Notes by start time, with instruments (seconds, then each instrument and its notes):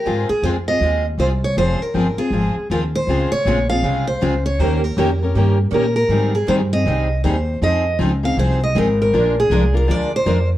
Already playing: steel-string acoustic guitar A#4
0.05 upright bass G#2, steel-string acoustic guitar G#3 C4 F4 G#4
0.29 steel-string acoustic guitar G#4, muted upright bass stroke
0.42 upright bass F2, steel-string acoustic guitar G#3 C4 F4 G#4 C5
0.68 steel-string acoustic guitar C4 F4 G#4 D#5
0.80 upright bass D#2, steel-string acoustic guitar G#3 C4 F4 G#4
1.17 upright bass C2, steel-string acoustic guitar G#3 C4 F4 G#4 C5
1.44 steel-string acoustic guitar C#5
1.57 upright bass F1, steel-string acoustic guitar F3 C4 F4 G#4 C5
1.81 steel-string acoustic guitar A#4, muted upright bass stroke
1.94 upright bass G1, steel-string acoustic guitar F3 C4 F4 G#4
2.17 steel-string acoustic guitar C4 F4 G#4, muted upright bass stroke
2.31 upright bass G#1, steel-string acoustic guitar F3 C4 F4 G#4
2.55 muted upright bass stroke
2.70 upright bass D#2, steel-string acoustic guitar F3 C4 F4 G#4 A#4
2.95 steel-string acoustic guitar C5
3.07 upright bass C#2, steel-string acoustic guitar C#3 G#3 C4 F4 G#4
3.32 steel-string acoustic guitar C#5, muted upright bass stroke
3.45 upright bass A#1, steel-string acoustic guitar C#3 G#3 C4 F4 G#4
3.70 steel-string acoustic guitar C4 F4 G#4 F5
3.83 upright bass C2, steel-string acoustic guitar C#3 G#3 C4 F4 G#4
4.08 steel-string acoustic guitar C5
4.21 upright bass C#2, steel-string acoustic guitar C#3 G#3 C4 F4 G#4
4.46 steel-string acoustic guitar C#5
4.59 upright bass D#2, steel-string acoustic guitar D#3 A#3 C#4 G4 A#4 C5
4.84 steel-string acoustic guitar A#4
4.97 upright bass F2, steel-string acoustic guitar D#3 A#3 C#4 G4 A#4
5.22 steel-string acoustic guitar C#4 G4 A#4
5.35 upright bass G2, steel-string acoustic guitar D#3 A#3 C#4 G4 A#4
5.71 upright bass A#2, steel-string acoustic guitar D#3 A#3 C#4 G4 A#4
5.96 steel-string acoustic guitar A#4
6.09 upright bass G#2, steel-string acoustic guitar D#3 G3 C4 D#4
6.13 steel-string acoustic guitar G#4
6.35 steel-string acoustic guitar G#4
6.48 upright bass G2, steel-string acoustic guitar D#3 G3 C4 D#4 G#4 C5
6.73 steel-string acoustic guitar C4 D#4 G#4 D#5
6.85 upright bass C2, steel-string acoustic guitar D#3 G3 C4 D#4 G#4
7.24 upright bass D#2, steel-string acoustic guitar D#3 G3 C4 D#4 G#4 C5
7.61 upright bass F2, steel-string acoustic guitar F3 C4 D#4 G#4 D#5
7.99 upright bass C#2, steel-string acoustic guitar F3 C4 D#4 G#4
8.23 steel-string acoustic guitar C4 D#4 G#4 F5
8.37 upright bass C2, steel-string acoustic guitar F3 C4 D#4 G#4 C5
8.64 steel-string acoustic guitar D#5
8.75 upright bass G#1, steel-string acoustic guitar F3 C4 D#4 G#4 A#4
9.02 steel-string acoustic guitar A#4
9.13 upright bass A#1, steel-string acoustic guitar F3 G#3 D4 F4 A#4
9.40 steel-string acoustic guitar G#4
9.50 upright bass C2, steel-string acoustic guitar F3 G#3 D4 F4 A#4
9.73 steel-string acoustic guitar D4 F4 A#4
9.87 upright bass D2, steel-string acoustic guitar F3 G#3 D4 F4 A#4 D5
10.16 steel-string acoustic guitar C5
10.26 upright bass F2, steel-string acoustic guitar F3 G#3 D4 F4 A#4